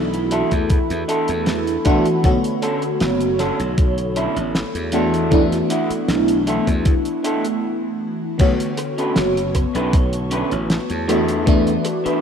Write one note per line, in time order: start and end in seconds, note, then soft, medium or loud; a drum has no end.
0.00 0.42 B1 loud
0.00 1.85 E3 loud
0.00 1.85 A3 medium
0.00 1.86 B3 medium
0.00 1.86 D4 medium
0.00 1.82 E4 loud
0.00 1.86 F#4 medium
0.00 7.59 A4 medium
0.00 2.21 E5 medium
0.00 7.59 B5 medium
0.14 closed hi-hat medium
0.31 0.52 D4 medium
0.31 0.52 E4 medium
0.31 0.52 A4 medium
0.31 closed hi-hat loud
0.51 0.78 E2 medium
0.51 kick medium
0.51 closed hi-hat medium
0.70 kick loud
0.70 closed hi-hat medium
0.90 1.03 E2 medium
0.90 closed hi-hat medium
1.08 1.29 D4 medium
1.08 1.29 E4 medium
1.08 1.29 A4 medium
1.08 closed hi-hat medium
1.28 1.76 E2 medium
1.28 closed hi-hat medium
1.46 snare loud
1.46 closed hi-hat medium
1.67 closed hi-hat medium
1.85 1.99 E1 medium
1.85 2.19 E3 medium
1.85 2.20 A3 medium
1.85 2.20 B3 medium
1.85 2.06 D4 medium
1.85 2.20 D4 medium
1.85 2.06 E4 medium
1.85 2.20 F#4 loud
1.85 2.06 A4 medium
1.85 kick loud
1.85 closed hi-hat loud
2.05 closed hi-hat medium
2.23 2.38 B1 loud
2.23 4.88 D3 medium
2.23 4.89 A3 medium
2.23 4.89 B3 medium
2.23 4.90 F#4 medium
2.23 4.91 C#5 medium
2.23 4.89 C#5 medium
2.23 kick loud
2.23 closed hi-hat medium
2.44 closed hi-hat medium
2.62 2.82 C#4 medium
2.62 2.83 D4 medium
2.62 2.83 A4 medium
2.62 closed hi-hat medium
2.82 closed hi-hat medium
3.00 3.50 F#1 loud
3.00 snare loud
3.00 closed hi-hat medium
3.21 closed hi-hat medium
3.39 3.59 C#4 medium
3.39 3.60 D4 medium
3.39 3.60 A4 medium
3.39 snare soft
3.39 closed hi-hat loud
3.59 4.26 B1 medium
3.59 closed hi-hat medium
3.78 kick loud
3.78 closed hi-hat medium
3.98 closed hi-hat medium
4.16 4.36 C#4 medium
4.16 4.37 D4 medium
4.16 4.37 E4 loud
4.16 closed hi-hat loud
4.36 4.62 A1 medium
4.36 closed hi-hat medium
4.55 snare loud
4.55 closed hi-hat medium
4.75 5.61 E2 medium
4.75 closed hi-hat medium
4.92 5.27 E3 medium
4.92 5.27 A3 medium
4.92 5.27 B3 medium
4.92 5.55 D4 medium
4.92 5.28 D4 medium
4.92 5.56 E4 medium
4.92 5.28 F#4 medium
4.92 5.56 A4 loud
4.92 7.60 E5 medium
4.92 closed hi-hat medium
5.14 closed hi-hat medium
5.30 7.62 E3 loud
5.30 7.62 A3 medium
5.30 7.63 B3 medium
5.30 7.63 D4 medium
5.30 7.63 E4 loud
5.30 kick loud
5.30 closed hi-hat medium
5.52 snare soft
5.52 closed hi-hat medium
5.70 5.90 D4 medium
5.70 5.91 E4 medium
5.70 5.91 F#4 loud
5.70 closed hi-hat loud
5.90 muted slap bass stroke soft
5.90 closed hi-hat medium
6.08 6.57 B1 loud
6.08 snare loud
6.08 closed hi-hat medium
6.28 closed hi-hat medium
6.47 6.67 D4 medium
6.47 6.67 E4 medium
6.47 6.68 A4 medium
6.47 closed hi-hat loud
6.67 6.93 E2 medium
6.67 kick medium
6.67 closed hi-hat medium
6.85 kick loud
6.85 closed hi-hat medium
7.05 closed hi-hat medium
7.24 7.44 D4 medium
7.24 7.44 E4 medium
7.24 7.45 A4 medium
7.24 closed hi-hat loud
7.45 closed hi-hat medium
8.38 8.53 B1 medium
8.38 11.04 D3 medium
8.38 11.04 A3 medium
8.38 11.04 B3 medium
8.38 11.05 F#4 medium
8.38 12.21 B4 medium
8.38 11.05 C#5 medium
8.38 12.21 A5 medium
8.38 11.06 C#6 medium
8.38 kick loud
8.38 closed hi-hat medium
8.38 crash medium
8.60 closed hi-hat medium
8.77 muted clean electric guitar stroke medium
8.77 closed hi-hat medium
8.98 9.16 C#4 medium
8.98 9.17 D4 medium
8.98 9.17 A4 medium
8.98 9.17 B4 medium
8.98 closed hi-hat medium
9.16 9.65 F#1 loud
9.16 snare loud
9.16 closed hi-hat medium
9.37 closed hi-hat medium
9.55 muted clean electric guitar stroke medium
9.55 kick medium
9.55 closed hi-hat loud
9.75 10.42 B1 loud
9.75 9.93 C#4 medium
9.75 9.93 D4 medium
9.75 9.94 A4 medium
9.75 9.94 B4 medium
9.75 closed hi-hat medium
9.93 kick loud
9.93 closed hi-hat medium
10.13 closed hi-hat medium
10.31 10.52 C#4 medium
10.31 10.52 D4 medium
10.31 10.52 A4 medium
10.31 10.52 B4 medium
10.31 closed hi-hat medium
10.52 10.78 A1 medium
10.52 closed hi-hat soft
10.70 snare loud
10.70 closed hi-hat medium
10.90 11.76 E2 medium
10.90 closed hi-hat medium
11.08 11.42 E3 medium
11.08 11.43 A3 medium
11.08 11.43 B3 medium
11.08 11.71 D4 medium
11.08 11.43 D4 medium
11.08 11.71 E4 medium
11.08 11.43 F#4 medium
11.08 11.71 A4 medium
11.08 11.71 B4 loud
11.08 12.21 E5 medium
11.08 12.21 D6 medium
11.08 closed hi-hat loud
11.28 closed hi-hat medium
11.46 12.21 E3 loud
11.46 12.21 A3 medium
11.46 12.21 B3 medium
11.46 12.21 D4 medium
11.46 12.21 E4 loud
11.46 kick loud
11.46 closed hi-hat medium
11.67 closed hi-hat medium
11.85 muted clean electric guitar stroke medium
11.85 closed hi-hat loud
12.05 12.21 D4 medium
12.05 12.21 E4 medium
12.05 12.21 A4 medium
12.05 12.21 B4 medium
12.05 muted slap bass stroke soft
12.05 closed hi-hat medium